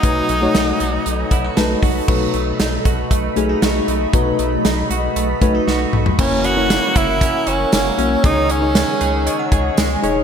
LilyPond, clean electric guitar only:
\new Staff \with { instrumentName = "Clean electric guitar" } { \time 4/4 \key b \mixolydian \tempo 4 = 117 fis8 a8 dis'8 fis'8 dis'8 e'16 fis'16 dis'8 fis'8 | fis8 a8 dis'8 fis'8 a8 cis'16 dis'16 fis'8 a8 | fis8 a8 dis'8 fis'8 a8 cis'16 dis'16 fis'8 a8 | e8 cis'8 ais8 fis'8 cis'8 fis'8 ais8 cis'8 |
dis8 cis'8 gis8 gis'8 cis'8 gis'8 gis8 cis'8 | }